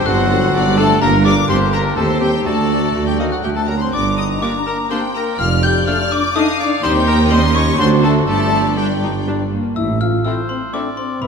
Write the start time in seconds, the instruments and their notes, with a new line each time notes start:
Already playing: bassoon C4, clarinet D4, violin section C5
0.05 double bass section G1, tuba G1, cello section G2, french horn section F#3, viola section D4 A4, oboe F#4, flute F#5, violin section F#5, glockenspiel F#6
0.30 viola section D4 A4
0.53 double bass section G1, tuba G1, cello section G2, viola section D4 A4, violin section D5
0.77 french horn section A3, viola section D4 A4, oboe A4, glockenspiel A5, violin section A5, flute A5
1.01 double bass section G1, tuba G1, cello section G2, french horn section A#3, bassoon A#3, viola section D4 G4, clarinet D4, violin section A#4 A#5, oboe A#4, flute A#5, glockenspiel A#5
1.25 french horn section D4, viola section D4 G4, oboe D5, flute D6, glockenspiel D6, violin section D6
1.48 double bass section G1, tuba G1, cello section G2, french horn section C4, viola section D4 G4, violin section G4 C6, oboe C5, flute C6, glockenspiel C6
1.73 french horn section A#3, viola section D4 G4, oboe A#4, flute A#5, violin section A#5, glockenspiel A#5
1.97 cello section D#2, double bass section D#2, tuba D#2, french horn section A3, viola section C4 G4, bassoon C4, clarinet G4, oboe A4, violin section C5 A5, flute A5, glockenspiel A5
2.21 french horn section G3, viola section C4 G4, oboe G4, glockenspiel G5, flute G5, violin section G5
2.39 glockenspiel A#5
2.45 cello section D2, double bass section D2, tuba D2, viola section A3 F#4, bassoon A3, french horn section A3, clarinet F#4, oboe A4, violin section D5 A5, glockenspiel A5, flute A5
2.71 viola section A3 F#4
2.95 double bass section D2, cello section D2, tuba D2, bassoon A3, viola section A3 F#4
3.07 french horn section G3, oboe G4, violin section G5, flute G5, glockenspiel G5
3.19 french horn section D#3, viola section A3 F#4, bassoon A#3, oboe D#4, violin section D#5, flute D#5, glockenspiel D#6
3.32 french horn section F#3, oboe F#4, flute F#5, violin section F#5, glockenspiel F#6
3.43 cello section D2, double bass section D2, tuba D2, french horn section G3, bassoon A3, viola section A3 F#4, oboe G4, violin section G5, glockenspiel G5, flute G5
3.55 french horn section A3, oboe A4, violin section A5, glockenspiel A5, flute A5
3.67 bassoon F#3, viola section A3 F#4, french horn section A#3, oboe A#4, violin section A#5, flute A#5, glockenspiel A#5
3.79 french horn section C4, oboe C5, violin section C6, flute C6, glockenspiel C6
3.92 double bass section G1, tuba G1, cello section G2, french horn section D4, oboe D5, violin section A#5 D6, glockenspiel D6, flute D6
4.18 french horn section D#4, oboe D#5, violin section D#6, flute D#6, glockenspiel D#6
4.41 viola section A#3 G4, bassoon A#3, clarinet D4, french horn section D4, oboe D5, flute D6, glockenspiel D6, violin section D6
4.66 french horn section A#3, oboe A#4, flute A#5, glockenspiel A#5, violin section A#5
4.90 viola section A#3 G4, bassoon A#3, french horn section C4, clarinet D4, oboe C5, violin section G5 C6, flute C6, glockenspiel C6
5.15 french horn section A#3, oboe A#4, glockenspiel A#5, flute A#5, violin section A#5
5.39 tuba F1, double bass section F1, cello section F2, french horn section F4, violin section D5 F6, oboe F5, flute F6, glockenspiel F6
5.63 french horn section G4, oboe G5, glockenspiel G6, flute G6, violin section G6
5.87 bassoon A3, clarinet D4, viola section D4 A4, french horn section F4, oboe F5, flute F6, glockenspiel F6, violin section F6
6.12 french horn section D4, oboe D5, flute D6, violin section D6, glockenspiel D6
6.35 bassoon A3, clarinet D4, viola section D4 A4, french horn section D#4, oboe D#5, violin section F5 D#6, flute D#6, glockenspiel D#6
6.59 french horn section D4, oboe D5, violin section D6, flute D6, glockenspiel D6
6.83 cello section D#2, tuba D#2, double bass section D#2, bassoon G3, french horn section C4, clarinet D#4, viola section D#4 G4, oboe C5, violin section G5 C6, flute C6, glockenspiel C6
7.07 french horn section A#3, oboe A#4, flute A#5, glockenspiel A#5, violin section A#5
7.30 bassoon G3, french horn section C4, viola section C#4 G4, clarinet D#4, oboe C5, violin section D#5 C6, glockenspiel C6, flute C6
7.55 french horn section C#4, oboe C#5, glockenspiel C#6, flute C#6, violin section C#6
7.78 cello section D2, double bass section D2, tuba D2, bassoon F#3, french horn section C4, viola section D4 F#4, clarinet D4, oboe C5, violin section C5 C6, flute C6, glockenspiel C6
8.03 french horn section A3, oboe A4, glockenspiel A5, flute A5, violin section A5
8.27 double bass section G1, tuba G1, cello section G2, french horn section A3, viola section D4 G4, oboe A4, violin section D5 A5, glockenspiel A5, flute A5
8.77 bassoon G3, french horn section G3, viola section D4, clarinet D4, oboe G4, glockenspiel G5, flute G5, violin section G5
9.02 viola section D#4
9.27 bassoon G3, viola section D4, clarinet D4
9.52 viola section A#3
9.76 double bass section A1, tuba A1, cello section A2, french horn section E4, flute E5, glockenspiel E6
10.01 french horn section F4, flute F5, glockenspiel F6
10.25 bassoon A3, clarinet C4, viola section C4, violin section E4 A4, french horn section E4, oboe C5, flute E5, glockenspiel E6
10.49 french horn section C4, flute C5, glockenspiel C6
10.73 bassoon A3, clarinet C4, viola section C4, french horn section D4, violin section E4 A4, flute D5, oboe D5, glockenspiel D6
10.97 french horn section C4, flute C5, glockenspiel C6
11.22 tuba C2, double bass section C2, cello section C3, french horn section B3, flute B4, oboe E5, glockenspiel B5